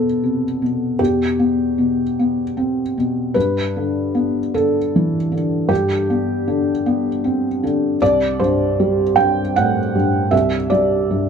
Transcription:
felt piano
Already playing: E2 B2 B3 A4 B4
0.23 C3
0.62 B2
0.99 E2 G4
1.39 B3
1.78 B2
2.19 B3
2.57 C4
2.98 B2
3.34 G2 B4
3.76 D3
4.15 B3
4.54 D3 A4
4.96 E3
5.32 D3
5.69 G2 G4
6.10 B3
6.48 D3
6.86 B3
7.24 C4
7.63 D3
8.02 C2 D5
8.40 G2 C5
8.80 G3
9.16 G2 G5
9.56 A2 F#5
9.95 G2
10.31 C2 E5
10.70 G3 D5
11.11 G2

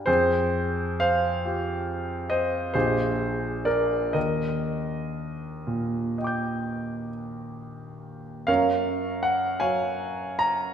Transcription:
grand piano
0.06 F2 G#4 C5
1.00 C5 F5
1.45 F4 G4
2.30 C5 D#5
2.74 A#1 F4 G4 G#4 C5
3.65 A#4 D5
4.13 D#2 A#4 D#5
5.67 A#2
6.18 D#5 G5
6.24 D6 G6
8.47 F#2 A#4 C#5 F5
9.23 F#5
9.60 F#3 C#5 F5 G#5
10.39 A#5

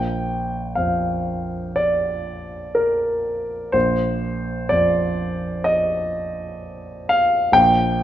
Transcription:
grand piano
Already playing: A#1 G5
0.75 F2 F5
1.76 D5
2.75 A#4
3.72 A#1 C5
4.69 F2 D5
5.64 D#5
7.09 F5
7.52 A#1 G5

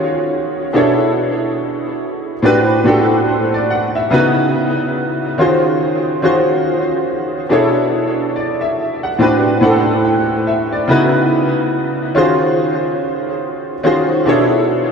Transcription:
grand piano
Already playing: D#3 C#4 F4 F#4 G#4 C5 C#5
0.73 B2 D4 E4 G#4 A4 C#5
2.42 A2 C4 D4 F#4 G4 B4
2.84 A2 C4 D4 F#4 G4 A4
3.28 C5
3.54 D5
3.70 F#5
3.95 E5
4.10 C#3 B3 D#4 E4 F#4 B4
5.38 D#3 C#4 F4 F#4 G#4 C5
6.22 D#3 C#4 F4 F#4 G#4 C5
7.49 B2 D4 E4 G#4 A4 C#5
8.36 D5
8.61 E5
9.03 F#5
9.18 A2 C4 D4 F#4 G4 B4
9.61 A2 C4 D4 G4 A4 F#5
10.05 G5
10.47 E5
10.72 D5
10.88 C#3 B3 D#4 E4 F#4 B4
12.15 D#3 C#4 F4 F#4 G#4 C5
13.83 D#3 C#4 F4 F#4 G#4 C5
14.26 B2 D4 E4 G#4 A4 C#5

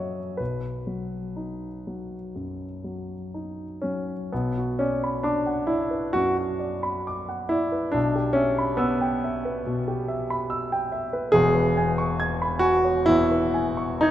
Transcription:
grand piano
Already playing: F#2 F#3 C#4 C#5 D#5 E5 F#5
0.37 B1 B4
0.87 F#3
1.36 D#4
1.87 F#3
2.36 F#2
2.84 F#3
3.34 D#4
3.82 F#3 C#4
4.32 B1 B3
4.58 F#4
4.79 C#4 D5
5.04 B5
5.23 D4 D6
5.46 F#5
5.67 E4 D5
5.91 B4
6.13 F#2 F#4
6.59 D5
6.83 B5
7.07 D6
7.29 F#5
7.49 E4 D5
7.72 B4
7.92 B1 D4
8.15 G4
8.33 C#4 E5
8.58 B5
8.77 B3 E6
9.01 G5
9.24 E5
9.45 B4
9.66 B2
9.88 G4
10.08 E5
10.30 B5
10.50 E6
10.72 G5
10.92 E5
11.13 B4
11.32 E1 E2 G#4
11.55 B4
11.77 G#5
11.98 C#6
12.20 G#6
12.42 B5
12.59 F#4 G#5
12.85 C#5
13.06 E2 E4
13.31 B4
13.54 G#5
13.77 C#6
14.01 D#4 G#6

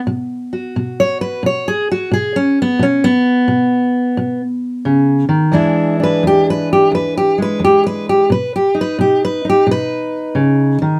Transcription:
steel-string acoustic guitar
0.07 B2
0.53 F#4
0.76 B2
1.00 C#5
1.21 B4
1.43 B2 C#5
1.68 G#4
1.92 F#4
2.12 B2 G#4
2.36 C#4
2.62 B3
2.79 B2 C#4
3.04 B3
3.48 B2
4.17 B2
4.85 C#3
5.29 D#3
5.52 E2 E3 G#3 D4 E4
6.00 D4 B4
6.23 E2
6.27 G4
6.50 B4
6.73 G4
6.92 E2 B4
7.18 G4
7.38 G#3
7.42 B4
7.59 E2
7.64 G4
7.87 B4
8.09 G4
8.30 B2 B4
8.56 G4
8.75 D#4
8.81 B4
8.99 B2 G4
9.25 B4
9.45 D#4
9.49 G4
9.67 B2
9.71 B4
10.35 C#3
10.82 D#3

